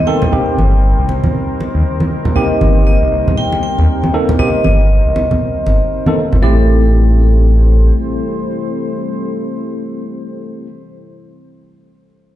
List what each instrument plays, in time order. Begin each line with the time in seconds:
Already playing: ambient pad G3 C4 D#4 A#4 C5
0.07 tine electric piano A#3 C4 D#4 A4, vibraphone G5
0.22 muted conga, low conga
0.32 analog synth bass C2, tine electric piano A#3 C4 D#4 G4, muted conga
0.58 analog synth bass G1, high conga
0.99 analog synth bass C2
1.09 analog synth bass C2, muted conga
1.24 high conga, low conga
1.60 muted conga
1.75 analog synth bass D#2
2.00 high conga
2.25 low conga
2.35 analog synth bass C2, tine electric piano A#3 C4 D#4 G4, vibraphone D#5
2.61 analog synth bass G1, high conga
2.87 vibraphone D#5
3.02 analog synth bass C2
3.12 analog synth bass C2
3.28 high conga, low conga
3.38 vibraphone G5
3.52 muted conga
3.63 vibraphone G5
3.78 analog synth bass D#2, muted conga
4.04 high conga
4.13 tine electric piano A#3 C4 D#4 A4
4.29 muted conga, low conga
4.39 analog synth bass C2, tine electric piano A#3 C4 D#4 G4, vibraphone D#5, muted conga
4.64 analog synth bass G1, vibraphone D#5, high conga
5.05 analog synth bass C2
5.15 analog synth bass C2, muted conga
5.31 high conga, low conga
5.66 analog synth bass G1, muted conga
6.06 tine electric piano A#3 C4 D#4 A4, high conga
6.32 analog synth bass G1, low conga
6.42 analog synth bass A1, ambient pad G3 C4 E4 A4 C5, tine electric piano A3 C4 E4 G4, vibraphone A4